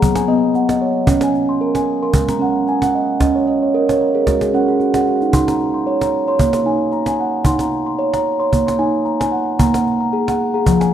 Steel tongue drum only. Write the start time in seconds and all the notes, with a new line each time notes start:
Already playing: G#4 A#5
0.02 F#3
0.16 G#5
0.28 B3 D#5
0.55 F#5
0.69 D#5
0.81 C#5
1.07 C#4
1.24 G#5
1.49 C6
1.61 A#4
1.76 G#5
2.03 A#4 C6
2.14 G#3
2.29 A#5
2.39 C#4 F#5
2.69 G#5
2.82 F#5
2.95 D#5
3.20 C#4 D#5
3.36 C#5
3.47 D#5
3.62 C#5
3.74 A#4 D#5
3.89 C#5
4.01 A#4
4.15 G#4 A#4
4.27 G#3 F#4
4.42 G#4
4.54 C#4 A#4 F#5
4.68 G#4
4.80 F#4
4.94 G#4 F#5
5.08 F#4
5.22 D#4
5.33 D#4 C6
5.48 A#5
5.74 C6
5.87 C#5
6.02 A#5
6.28 C#5 C6
6.40 A#3
6.54 C6
6.66 D#4 G#5
6.93 A#5
7.08 G#5
7.20 F#5
7.46 D#4 C6
7.61 A#5
7.86 C6
7.99 C#5
8.14 A#5
8.40 C#5 C6
8.52 A#3
8.67 C6
8.79 D#4 G#5
9.05 A#5
9.20 G#5
9.32 F#5
9.59 A#3 A#5
9.74 F#5
10.00 A#5
10.13 G#4
10.27 F#5
10.54 G#4 A#5
10.67 F3
10.80 G#5